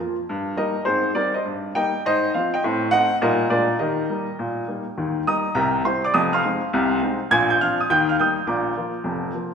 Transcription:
0.00 0.15 F3 soft
0.00 0.15 A#3 soft
0.00 0.15 F4 soft
0.29 0.53 G2 medium
0.56 0.72 G3 soft
0.56 0.73 A#3 soft
0.56 0.73 D#4 soft
0.56 0.84 A#4 medium
0.56 0.82 D#5 medium
0.85 1.10 G#2 medium
0.85 1.03 C4 soft
0.85 1.13 G#4 soft
0.85 1.10 C5 medium
1.15 1.31 G3 soft
1.15 1.31 C4 soft
1.15 1.32 D#4 soft
1.15 1.33 A#4 medium
1.15 1.31 D5 medium
1.34 1.45 C5 soft
1.34 1.43 D#5 medium
1.45 1.70 G2 medium
1.75 1.91 G3 soft
1.75 1.92 A#3 soft
1.75 1.91 D#4 soft
1.75 2.02 D#5 medium
1.75 1.99 G5 medium
2.06 2.29 G#2 medium
2.06 2.32 C5 medium
2.06 2.30 D#5 medium
2.34 2.50 F3 soft
2.34 2.50 C4 soft
2.34 2.50 F4 medium
2.34 2.52 C5 medium
2.34 2.49 F5 medium
2.54 2.63 D#5 medium
2.54 2.61 G5 medium
2.64 2.88 A2 medium
2.64 2.80 C4 medium
2.91 3.07 A3 medium
2.91 3.08 C4 soft
2.91 3.08 D#4 soft
2.91 3.19 D#5 medium
2.91 3.16 F#5 loud
3.22 3.46 A#2 medium
3.22 3.38 G3 medium
3.22 3.38 A#3 soft
3.22 3.39 D#4 medium
3.22 3.49 A#4 medium
3.22 3.46 D#5 medium
3.50 3.75 A#2 medium
3.50 3.66 G#3 soft
3.50 3.67 A#3 soft
3.50 3.67 D4 medium
3.50 3.67 F4 soft
3.50 3.78 A#4 medium
3.50 3.75 D5 medium
3.79 4.04 D#3 medium
3.79 3.97 G4 soft
3.79 4.82 A#4 soft
3.79 4.70 D#5 medium
4.10 4.25 G3 soft
4.10 4.26 A#3 soft
4.10 4.26 D#4 soft
4.39 4.63 A#2 medium
4.68 4.84 G3 soft
4.68 4.84 A#3 soft
4.68 4.84 D#4 soft
4.97 5.22 D#2 medium
4.97 5.22 D#3 medium
5.27 5.43 G3 soft
5.27 5.43 A#3 soft
5.27 5.43 D#4 soft
5.27 5.54 D#5 medium
5.27 5.53 A#5 medium
5.27 5.51 D#6 medium
5.55 5.80 C2 medium
5.55 5.80 C3 medium
5.55 5.83 A#4 medium
5.55 5.82 G5 medium
5.55 5.79 A#5 medium
5.85 6.01 G3 soft
5.85 6.01 C4 soft
5.85 6.01 E4 soft
5.85 6.03 C5 medium
5.85 6.01 C6 medium
6.04 6.14 D5 medium
6.04 6.12 D6 medium
6.14 6.39 F1 medium
6.14 6.39 F2 medium
6.14 6.32 D#5 medium
6.14 6.30 D#6 medium
6.33 7.17 F5 medium
6.33 7.17 C6 medium
6.33 7.07 F6 medium
6.44 6.60 G#3 medium
6.44 6.60 C4 medium
6.44 6.60 D#4 soft
6.73 6.97 C2 medium
6.73 6.97 C3 medium
7.03 7.18 G#3 soft
7.03 7.18 C4 soft
7.03 7.19 D#4 soft
7.31 7.55 A#1 medium
7.31 7.56 A#2 medium
7.31 7.49 G#5 medium
7.31 7.47 G#6 loud
7.50 7.58 G6 medium
7.61 7.77 F3 soft
7.61 7.77 C4 soft
7.61 7.78 D4 soft
7.61 7.79 F5 medium
7.61 7.77 F6 medium
7.80 7.88 D#6 medium
7.90 8.14 D#2 medium
7.90 8.14 D#3 medium
7.90 8.08 G5 medium
7.90 8.06 G6 medium
8.09 8.19 F5 medium
8.09 8.17 F6 medium
8.20 8.35 G3 soft
8.20 8.35 A#3 soft
8.20 8.36 D#4 soft
8.20 8.47 G5 soft
8.20 8.47 D#6 medium
8.20 8.44 G6 medium
8.47 8.72 A#1 soft
8.47 8.72 A#2 medium
8.47 9.32 D5 soft
8.47 9.32 A#5 soft
8.47 9.22 D6 medium
8.77 8.93 F3 soft
8.77 8.93 A#3 soft
8.77 8.93 F4 soft
9.04 9.30 F1 medium
9.04 9.30 F2 medium
9.34 9.51 F3 soft
9.34 9.51 A#3 soft
9.34 9.51 F4 soft

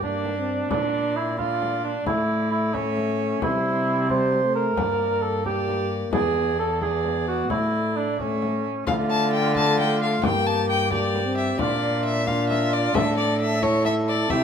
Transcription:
0.00 0.69 G2 medium
0.00 0.70 D4 medium
0.00 frame drum soft
0.04 0.37 A#3 medium
0.04 0.70 D5 medium
0.25 frame drum soft
0.38 0.71 C4 medium
0.71 2.04 A#2 medium
0.71 1.18 D4 medium
0.71 1.38 D4 medium
0.71 1.38 D5 medium
0.71 frame drum medium
1.16 1.38 E4 medium
1.39 2.09 D4 medium
1.39 1.83 F4 medium
1.39 2.06 D5 medium
1.39 frame drum soft
1.62 frame drum soft
1.84 2.06 D4 medium
2.06 3.40 A2 medium
2.06 2.74 A3 medium
2.06 2.51 E4 medium
2.06 2.76 D5 medium
2.06 frame drum medium
2.51 2.76 E4 medium
2.74 3.41 A3 medium
2.74 3.42 C#4 medium
2.74 3.42 E5 medium
2.74 frame drum soft
2.97 frame drum soft
3.42 4.74 C3 medium
3.42 4.06 G3 medium
3.42 4.09 E4 medium
3.42 4.07 C5 medium
3.42 frame drum medium
4.10 4.43 G3 medium
4.10 4.76 C5 medium
4.10 4.54 C5 medium
4.10 frame drum soft
4.32 frame drum soft
4.44 4.77 A3 medium
4.55 5.24 A#4 medium
4.77 6.11 G2 medium
4.77 5.44 A#3 medium
4.77 5.44 D5 medium
4.77 frame drum medium
5.22 5.45 A4 medium
5.45 6.15 A#3 medium
5.45 5.89 G4 medium
5.45 6.12 D5 medium
5.45 frame drum soft
5.68 frame drum soft
6.13 7.47 E2 medium
6.13 6.65 B3 medium
6.13 6.56 G#4 medium
6.13 6.80 D5 medium
6.13 frame drum medium
6.59 6.81 A4 medium
6.82 7.52 B3 medium
6.82 7.27 G#4 medium
6.82 7.49 D5 medium
6.82 frame drum soft
7.05 frame drum soft
7.28 7.50 F#4 medium
7.50 8.65 A2 medium
7.50 8.19 A3 medium
7.50 7.98 E4 medium
7.50 8.18 D5 medium
7.50 frame drum medium
7.96 8.19 D4 medium
8.19 8.64 A3 medium
8.19 8.86 C#4 medium
8.19 8.66 E5 medium
8.19 frame drum soft
8.42 frame drum soft
8.87 10.20 D3 medium
8.87 9.52 A3 medium
8.87 9.52 F4 medium
8.87 8.95 F5 medium
8.87 frame drum medium
9.10 9.33 A5 loud
9.33 9.55 G5 loud
9.55 10.23 A3 medium
9.55 10.26 F4 medium
9.55 9.79 A5 loud
9.55 frame drum soft
9.78 10.01 G5 loud
9.78 frame drum soft
10.02 10.23 F5 loud
10.23 11.57 G2 medium
10.23 10.91 A#3 medium
10.23 10.91 G4 medium
10.23 10.48 G5 loud
10.23 frame drum medium
10.47 10.69 A5 loud
10.70 10.92 G5 loud
10.91 11.27 A#3 medium
10.91 11.62 G4 medium
10.91 11.37 D5 loud
10.91 frame drum soft
11.14 frame drum soft
11.25 11.61 C4 medium
11.37 11.59 E5 medium
11.59 12.92 A#2 medium
11.59 12.27 D4 medium
11.59 12.11 F4 medium
11.59 12.04 D5 medium
11.59 frame drum medium
12.05 12.29 E5 loud
12.27 12.94 D4 medium
12.27 12.97 F4 medium
12.27 12.49 F5 loud
12.27 frame drum medium
12.50 12.74 E5 loud
12.50 frame drum soft
12.73 12.97 D5 loud
12.95 14.28 A2 medium
12.95 13.62 D4 medium
12.95 13.63 A4 medium
12.95 13.17 E5 loud
12.95 frame drum medium
13.18 13.40 D5 medium
13.41 13.64 E5 loud
13.62 14.29 E4 medium
13.62 14.30 A4 medium
13.62 13.85 C#5 loud
13.62 frame drum medium
13.85 13.94 E5 loud
13.85 frame drum medium
14.09 14.32 D5 loud
14.30 14.44 C3 medium
14.30 14.44 E4 medium
14.30 14.44 G4 medium
14.30 14.44 E5 loud
14.30 frame drum medium

